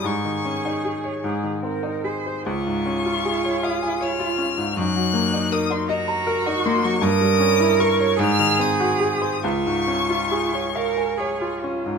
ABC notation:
X:1
M:6/8
L:1/16
Q:3/8=50
K:Db
V:1 name="Violin"
d'6 z6 | d'6 e'2 f'4 | g'4 e' c' b3 d' c' d' | e'4 d'2 f'2 e'4 |
d'8- d'2 z2 |]
V:2 name="Cello"
A6 A2 B2 c2 | F12 | E6 G6 | B6 A6 |
F6 B2 A2 F2 |]
V:3 name="Grand piano"
A,, E, D E A d A,, E, C E A c | D,, A,, D F A d f a d F D A,, | G,, G, B, E B E e b B E B, G, | =G,, =G, D =E B d A,, _E, C _G A c |
D,, A,, D F A d f a d F D A,, |]